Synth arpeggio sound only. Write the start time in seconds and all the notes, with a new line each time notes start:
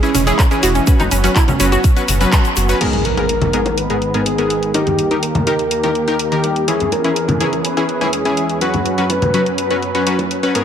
0.03 C#4
0.15 C#4
0.27 G#4
0.39 C#4
0.51 C#4
0.63 F#4
0.75 C#4
0.87 C#4
1.00 D#4
1.11 C#4
1.24 C#4
1.36 E4
1.48 C#4
1.60 C#4
1.72 F#4